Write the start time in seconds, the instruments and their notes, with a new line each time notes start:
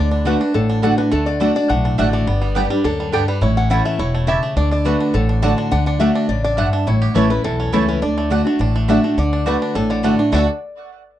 Already playing: upright bass D2, steel-string acoustic guitar D3, five-string banjo D4
0.00 resonator guitar played with a steel bar D5
0.11 five-string banjo D4
0.25 steel-string acoustic guitar D3 A3 D4 F#4, mandolin A3 F#4 D5 F#5, five-string banjo A3, resonator guitar played with a steel bar B4
0.40 five-string banjo D4, steel-string acoustic guitar D4 F#4
0.54 upright bass A1, steel-string acoustic guitar A2, five-string banjo D3, resonator guitar played with a steel bar A4
0.70 five-string banjo D4
0.82 steel-string acoustic guitar D3 A3 D4 F#4, five-string banjo D3, mandolin A3 F#4 D5 F#5, resonator guitar played with a steel bar A4
0.98 five-string banjo D4, steel-string acoustic guitar D4 F#4, resonator guitar played with a steel bar B4
1.11 upright bass D2, steel-string acoustic guitar D3, five-string banjo A3, resonator guitar played with a steel bar A4
1.26 resonator guitar played with a steel bar D5
1.40 steel-string acoustic guitar D3 A3 D4 F#4, mandolin A3 F#4 D5 F#5, five-string banjo D4
1.55 five-string banjo D4, steel-string acoustic guitar D4 F#4, resonator guitar played with a steel bar D5
1.69 upright bass B1, steel-string acoustic guitar A2, five-string banjo A3, resonator guitar played with a steel bar F#5
1.85 five-string banjo D4
1.98 upright bass A1, steel-string acoustic guitar D3 A3 D4 F#4, mandolin A3 F#4 D5 F#5, five-string banjo D4, resonator guitar played with a steel bar E5
2.13 five-string banjo A3, resonator guitar played with a steel bar D5
2.27 upright bass G1, steel-string acoustic guitar G2, five-string banjo B3
2.42 five-string banjo G3
2.55 steel-string acoustic guitar G3 B3 D4 G4, mandolin B3 G4 D5 G5, five-string banjo D4, resonator guitar played with a steel bar B4
2.70 five-string banjo G3, steel-string acoustic guitar D4 G4
2.84 upright bass D2, steel-string acoustic guitar F#2, five-string banjo D4, resonator guitar played with a steel bar A4
3.00 five-string banjo G3
3.12 steel-string acoustic guitar G2, mandolin B3 G4 D5 G5, five-string banjo D4, resonator guitar played with a steel bar A4
3.28 five-string banjo G3, resonator guitar played with a steel bar B4
3.41 upright bass A1, steel-string acoustic guitar A2, five-string banjo E4, resonator guitar played with a steel bar C#5
3.57 five-string banjo C#4, resonator guitar played with a steel bar F#5
3.70 steel-string acoustic guitar E3 A3 C#4 E4, mandolin A3 E4 C#5 A5, five-string banjo E4, resonator guitar played with a steel bar F#5
3.85 five-string banjo A3, resonator guitar played with a steel bar E5
3.99 upright bass E1, steel-string acoustic guitar B2, five-string banjo E4, resonator guitar played with a steel bar C#5
4.14 five-string banjo A3
4.27 steel-string acoustic guitar C#3, mandolin A3 E4 C#5 A5, five-string banjo G4, resonator guitar played with a steel bar E5
4.43 five-string banjo A3
4.56 upright bass D2, steel-string acoustic guitar D3, five-string banjo D4, resonator guitar played with a steel bar D5
4.71 five-string banjo D4, resonator guitar played with a steel bar D5
4.85 steel-string acoustic guitar D3 A3 D4 F#4, mandolin A3 F#4 D5 F#5, five-string banjo A3, resonator guitar played with a steel bar B4
5.00 five-string banjo D4
5.14 upright bass A1, steel-string acoustic guitar A2, five-string banjo D3, resonator guitar played with a steel bar A4
5.29 five-string banjo D4
5.42 steel-string acoustic guitar D3 A3 D4 F#4, five-string banjo D3, mandolin A3 F#4 D5 F#5, resonator guitar played with a steel bar A5
5.58 five-string banjo D4
5.71 upright bass D2, steel-string acoustic guitar D3, five-string banjo D4, resonator guitar played with a steel bar F#5
5.86 five-string banjo D4, resonator guitar played with a steel bar F#5
6.00 steel-string acoustic guitar D3 A3 D4 F#4, mandolin A3 F#4 D5 F#5, five-string banjo A3, resonator guitar played with a steel bar E5
6.15 five-string banjo D4
6.29 upright bass A1, steel-string acoustic guitar C#3, resonator guitar played with a steel bar D5
6.44 five-string banjo D4, resonator guitar played with a steel bar D5
6.57 steel-string acoustic guitar G2, five-string banjo D3, mandolin A3 F#4 D5 F#5, resonator guitar played with a steel bar E5
6.73 five-string banjo D4
6.87 upright bass A1, steel-string acoustic guitar A2, five-string banjo E4, resonator guitar played with a steel bar C#5
7.02 five-string banjo G4
7.14 upright bass A1, steel-string acoustic guitar E3 A3 C#4 E4, mandolin A3 E4 C#5 A5, five-string banjo A3, resonator guitar played with a steel bar B4
7.30 steel-string acoustic guitar C#4 E4, five-string banjo E4, resonator guitar played with a steel bar B4
7.44 upright bass B1, steel-string acoustic guitar E2, five-string banjo E3, resonator guitar played with a steel bar A4
7.60 five-string banjo C#4
7.73 upright bass C#2, steel-string acoustic guitar E3 A3 C#4 E4, five-string banjo E3, mandolin A3 E4 C#5 A5, resonator guitar played with a steel bar A4
7.88 five-string banjo C#4, resonator guitar played with a steel bar B4
8.02 upright bass D2, steel-string acoustic guitar D3, five-string banjo D4, resonator guitar played with a steel bar D5
8.18 five-string banjo A3
8.30 steel-string acoustic guitar D3 A3 D4 F#4, mandolin A3 F#4 D5 F#5, five-string banjo D4
8.45 five-string banjo A3, steel-string acoustic guitar D4 F#4
8.59 upright bass A1, steel-string acoustic guitar A2, five-string banjo D4
8.76 five-string banjo A3
8.88 steel-string acoustic guitar D3 A3 D4 F#4, mandolin A3 F#4 D5 F#5, five-string banjo D4, resonator guitar played with a steel bar E5
9.03 five-string banjo A3, steel-string acoustic guitar D4 F#4
9.18 upright bass D2, five-string banjo D3, steel-string acoustic guitar D3, resonator guitar played with a steel bar D5
9.33 five-string banjo D4
9.46 steel-string acoustic guitar D3 A3 D4 F#4, mandolin A3 F#4 D5 F#5, five-string banjo D4, resonator guitar played with a steel bar B4
9.62 five-string banjo D4
9.75 upright bass A1, steel-string acoustic guitar A2, five-string banjo D4, resonator guitar played with a steel bar A4
9.90 five-string banjo D3, resonator guitar played with a steel bar D5
10.03 steel-string acoustic guitar D3 A3 D4 F#4, mandolin A3 F#4 D5 F#5, five-string banjo A3
10.18 five-string banjo D4, steel-string acoustic guitar D4 F#4
10.32 upright bass D2, steel-string acoustic guitar D3 A3 D4 F#4, mandolin A3 F#4 D5 F#5, five-string banjo A3 D4, resonator guitar played with a steel bar D5
10.36 five-string banjo F#4 A4